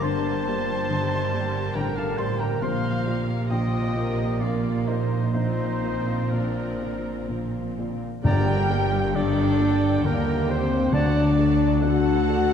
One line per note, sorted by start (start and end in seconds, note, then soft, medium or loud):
0.00 1.72 G1 medium
0.00 0.45 G1 medium
0.00 1.71 G2 medium
0.00 0.45 G2 medium
0.00 2.66 G2 medium
0.00 0.31 D3 soft
0.00 0.45 D3 medium
0.00 0.90 A#3 medium
0.00 0.88 G4 medium
0.00 2.58 G4 medium
0.00 0.89 A#4 medium
0.00 1.06 A#4 medium
0.00 1.77 C5 loud
0.00 0.88 C5 medium
0.00 1.72 A5 loud
0.00 1.78 A5 loud
0.00 1.71 C6 medium
0.04 1.76 C6 loud
0.32 2.02 D3 soft
0.47 0.90 F3 medium
0.47 0.86 A#3 soft
0.47 0.86 G4 soft
0.47 0.86 D5 medium
0.88 1.31 G1 medium
0.88 1.31 G2 medium
0.88 1.33 D#3 medium
0.88 1.74 G3 medium
0.88 1.73 G4 medium
0.88 1.45 G4 medium
0.88 2.59 A#4 medium
1.33 2.63 D3 medium
1.33 1.71 A#3 medium
1.33 1.71 G4 medium
1.33 1.72 D5 medium
1.46 2.65 G4 medium
1.74 2.17 G1 medium
1.74 2.60 A1 medium
1.74 2.17 G2 medium
1.74 2.60 A2 medium
1.74 2.60 G3 medium
1.74 1.98 A#4 medium
1.74 2.63 A#4 medium
1.74 1.96 G5 medium
1.74 1.97 G5 medium
1.74 1.95 A#5 medium
1.74 1.99 A#5 medium
1.96 2.22 A4 medium
1.96 2.19 F5 medium
1.96 2.18 F5 medium
1.96 2.20 A5 medium
1.96 2.18 A5 medium
2.03 2.65 D3 soft
2.17 2.58 G4 soft
2.17 2.58 A#4 soft
2.17 2.43 C5 medium
2.17 2.58 D5 medium
2.17 2.40 A5 medium
2.17 2.38 C6 medium
2.17 2.42 C6 medium
2.32 3.20 A#3 medium
2.39 2.63 A#4 medium
2.39 2.63 G5 medium
2.39 2.62 G5 medium
2.39 2.64 A#5 medium
2.39 2.61 A#5 medium
2.60 7.99 A#1 medium
2.60 3.05 A#1 medium
2.60 7.98 A#2 medium
2.60 5.34 A#2 medium
2.60 3.05 A#2 medium
2.60 5.31 C3 medium
2.60 3.50 A#3 medium
2.60 5.31 F4 medium
2.60 3.06 F4 medium
2.60 3.49 A#4 medium
2.60 3.23 C5 medium
2.60 3.51 F5 medium
2.60 3.23 F5 medium
2.60 3.47 C6 medium
2.60 3.24 C6 medium
2.91 4.71 F3 soft
3.06 3.47 A#3 medium
3.06 3.47 F4 soft
3.06 3.52 G4 medium
3.06 3.47 D5 medium
3.21 4.40 A#3 soft
3.50 3.95 A#1 medium
3.50 3.95 A#2 medium
3.50 5.32 A#3 medium
3.50 4.11 F4 medium
3.50 3.97 F4 medium
3.50 4.43 G4 medium
3.50 3.96 C5 medium
3.50 4.42 D#5 medium
3.50 4.40 D#5 medium
3.50 4.38 G5 medium
3.50 4.43 G5 medium
3.81 7.71 C5 medium
3.96 4.38 A#3 soft
3.96 4.38 F4 soft
3.96 4.40 A#4 medium
3.96 4.42 A#4 medium
3.96 4.38 C5 soft
4.12 6.32 F4 soft
4.40 4.86 A#1 medium
4.40 4.86 A#2 medium
4.40 5.02 A#3 soft
4.40 4.90 F4 medium
4.40 5.17 A#4 medium
4.40 4.89 D5 medium
4.40 4.88 D5 medium
4.40 4.90 F5 medium
4.40 4.85 F5 medium
4.45 5.35 A#4 medium
4.72 5.67 F3 soft
4.87 5.31 A#3 soft
4.87 5.33 D#4 medium
4.87 5.31 F4 soft
4.87 5.32 C5 medium
4.87 5.32 C5 soft
4.87 5.34 C5 medium
4.87 5.32 D#5 medium
4.87 5.35 D#5 medium
5.33 5.82 A#1 medium
5.33 5.82 A#2 medium
5.33 8.27 A#2 medium
5.33 8.03 F3 medium
5.33 7.99 C4 medium
5.33 6.30 D#4 medium
5.33 6.31 C5 medium
5.33 7.72 C5 medium
5.33 6.31 C5 medium
5.33 6.28 D#5 medium
5.33 6.35 D#5 medium
5.38 8.00 F4 medium
5.38 8.00 A#4 medium
5.68 7.60 F3 soft
5.83 6.28 A#3 soft
5.83 6.28 F4 soft
5.83 6.29 C5 soft
6.01 7.28 A#3 soft
6.30 6.79 A#1 medium
6.30 6.79 A#2 soft
6.30 7.27 D4 medium
6.30 6.97 F4 medium
6.30 7.27 A#4 medium
6.30 7.28 A#4 medium
6.30 6.81 D5 medium
6.30 7.29 D5 medium
6.81 7.25 A#3 soft
6.81 7.25 F4 soft
6.81 7.25 D5 soft
6.98 8.28 F4 soft
7.29 7.75 A#1 medium
7.29 7.75 A#2 medium
7.29 7.92 A#3 soft
7.62 8.28 F3 soft
7.78 8.20 A#3 soft
7.78 8.20 F4 soft
7.78 8.21 D5 soft
7.93 8.84 A#3 soft
8.23 8.68 G1 medium
8.23 10.00 G1 medium
8.23 9.99 G2 medium
8.23 8.68 G2 medium
8.23 10.97 G2 medium
8.23 9.56 G2 loud
8.23 9.11 D3 medium
8.23 9.10 G4 loud
8.23 9.11 A#4 medium
8.23 8.67 D5 medium
8.23 8.59 D5 medium
8.23 9.17 G5 loud
8.23 9.11 G5 loud
8.23 8.67 A#5 medium
8.55 10.33 D3 medium
8.69 9.10 A#3 medium
8.69 9.10 G4 medium
8.69 9.11 D5 medium
8.69 10.93 G5 medium
8.85 10.03 A#3 medium
9.14 9.58 G1 medium
9.14 9.57 G2 medium
9.14 9.59 D#3 medium
9.14 10.04 D4 loud
9.14 9.74 G4 medium
9.14 10.04 A4 medium
9.14 10.07 D5 loud
9.14 10.05 D5 loud
9.45 12.53 D6 medium
9.59 10.93 D3 medium
9.59 10.00 A#3 medium
9.59 10.00 G4 medium
9.59 10.00 D5 medium
9.75 10.97 G4 medium
10.04 10.47 G1 medium
10.04 10.93 D#2 medium
10.04 10.47 G2 medium
10.04 10.62 A#3 medium
10.04 10.49 A#3 loud
10.04 10.93 G4 medium
10.04 10.48 A#4 loud
10.04 10.52 A#4 loud
10.34 10.93 D3 medium
10.48 10.89 A#3 medium
10.48 10.93 C4 loud
10.48 10.89 G4 medium
10.48 10.93 C5 medium
10.48 10.95 C5 medium
10.48 10.89 D5 medium
10.64 10.97 A#3 medium
10.92 11.36 D2 medium
10.92 12.53 D2 medium
10.92 11.36 D3 medium
10.92 12.23 D3 loud
10.92 12.53 D3 medium
10.92 11.83 F#3 medium
10.92 11.81 D4 loud
10.92 11.81 F#4 medium
10.92 11.81 D5 loud
10.92 11.83 D5 loud
10.92 11.27 D5 medium
10.92 11.37 F#5 medium
10.92 11.35 A5 medium
11.24 12.53 A3 medium
11.37 11.79 D4 medium
11.37 11.79 A4 medium
11.37 11.79 D5 medium
11.37 11.81 A5 medium
11.82 12.25 D2 medium
11.82 12.25 D3 medium
11.82 12.53 D3 medium
11.82 12.53 F#4 loud
11.82 12.40 A4 medium
11.82 12.53 A4 medium
11.82 12.53 F#5 loud
11.82 12.53 A5 medium
12.29 12.53 D4 medium
12.29 12.53 A4 medium
12.29 12.53 D5 medium